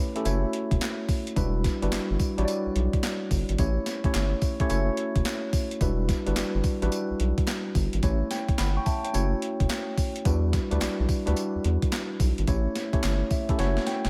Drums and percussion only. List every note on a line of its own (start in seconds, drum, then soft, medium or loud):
0.16 closed hi-hat medium
0.25 closed hi-hat medium
0.25 tambourine medium
0.53 closed hi-hat medium
0.71 kick loud
0.71 closed hi-hat medium
0.81 snare loud
0.81 clap loud
0.81 closed hi-hat medium
0.81 tambourine loud
1.09 kick loud
1.09 open hi-hat medium
1.09 tambourine medium
1.27 closed hi-hat medium
1.36 kick loud
1.36 closed hi-hat medium
1.36 tambourine medium
1.64 kick loud
1.64 snare medium
1.64 closed hi-hat medium
1.64 tambourine medium
1.82 closed hi-hat medium
1.92 snare loud
1.92 clap loud
1.92 closed hi-hat medium
1.92 tambourine loud
2.19 kick medium
2.19 open hi-hat medium
2.19 tambourine medium
2.38 closed hi-hat medium
2.48 closed hi-hat medium
2.48 tambourine medium
2.76 closed hi-hat medium
2.93 kick loud
2.93 closed hi-hat medium
3.03 snare loud
3.03 clap loud
3.03 closed hi-hat medium
3.03 tambourine medium
3.31 kick loud
3.31 open hi-hat medium
3.31 tambourine medium
3.49 closed hi-hat medium
3.58 kick loud
3.58 closed hi-hat medium
3.58 tambourine medium
3.86 snare medium
3.86 closed hi-hat medium
3.86 tambourine medium
4.04 kick loud
4.04 closed hi-hat medium
4.14 snare loud
4.14 clap loud
4.14 closed hi-hat medium
4.14 tambourine loud
4.42 kick loud
4.42 open hi-hat medium
4.42 tambourine medium
4.60 kick loud
4.60 closed hi-hat medium
4.70 closed hi-hat medium
4.70 tambourine medium
4.97 closed hi-hat medium
5.16 kick loud
5.16 closed hi-hat medium
5.25 snare loud
5.25 clap loud
5.25 closed hi-hat medium
5.25 tambourine medium
5.53 kick loud
5.53 open hi-hat medium
5.53 tambourine medium
5.71 closed hi-hat medium
5.81 kick loud
5.81 closed hi-hat medium
5.81 tambourine medium
6.09 kick loud
6.09 snare medium
6.09 closed hi-hat medium
6.09 tambourine medium
6.27 closed hi-hat medium
6.36 snare loud
6.36 clap medium
6.36 clap loud
6.36 closed hi-hat medium
6.36 tambourine loud
6.64 kick medium
6.64 open hi-hat medium
6.64 tambourine medium
6.82 closed hi-hat medium
6.92 closed hi-hat medium
6.92 tambourine medium
7.20 closed hi-hat medium
7.38 kick loud
7.38 closed hi-hat medium
7.47 snare loud
7.47 clap medium
7.47 clap loud
7.47 closed hi-hat medium
7.47 tambourine loud
7.75 kick loud
7.75 open hi-hat medium
7.75 tambourine medium
7.93 closed hi-hat medium
8.03 kick loud
8.03 closed hi-hat medium
8.03 tambourine medium
8.31 snare medium
8.31 closed hi-hat medium
8.31 tambourine medium
8.49 kick loud
8.49 closed hi-hat medium
8.58 snare loud
8.58 clap medium
8.58 clap loud
8.58 closed hi-hat medium
8.58 tambourine loud
8.86 kick medium
8.86 open hi-hat medium
8.86 tambourine medium
9.05 closed hi-hat medium
9.14 closed hi-hat medium
9.14 tambourine medium
9.42 closed hi-hat medium
9.60 kick loud
9.60 closed hi-hat medium
9.69 snare loud
9.69 clap medium
9.69 closed hi-hat medium
9.69 tambourine loud
9.98 kick loud
9.98 open hi-hat medium
9.98 tambourine medium
10.16 closed hi-hat medium
10.25 kick loud
10.25 closed hi-hat medium
10.25 tambourine medium
10.53 kick loud
10.53 snare medium
10.53 closed hi-hat medium
10.53 tambourine medium
10.71 closed hi-hat medium
10.81 snare loud
10.81 clap medium
10.81 clap loud
10.81 closed hi-hat medium
10.81 tambourine loud
11.09 kick medium
11.09 open hi-hat medium
11.09 tambourine medium
11.27 closed hi-hat medium
11.36 closed hi-hat medium
11.36 tambourine medium
11.64 closed hi-hat medium
11.82 kick loud
11.82 closed hi-hat medium
11.92 snare loud
11.92 clap medium
11.92 closed hi-hat medium
11.92 tambourine loud
12.20 kick loud
12.20 open hi-hat medium
12.20 tambourine medium
12.38 closed hi-hat medium
12.47 kick loud
12.47 closed hi-hat medium
12.47 tambourine medium
12.76 snare medium
12.76 closed hi-hat medium
12.76 tambourine medium
12.93 kick loud
12.93 closed hi-hat medium
13.03 snare loud
13.03 clap medium
13.03 clap loud
13.03 closed hi-hat medium
13.03 tambourine loud
13.31 kick medium
13.31 open hi-hat medium
13.31 tambourine medium
13.49 kick medium
13.49 closed hi-hat medium
13.59 snare medium
13.59 closed hi-hat medium
13.77 snare medium
13.87 snare medium
13.87 closed hi-hat medium
14.05 snare medium
14.05 closed hi-hat medium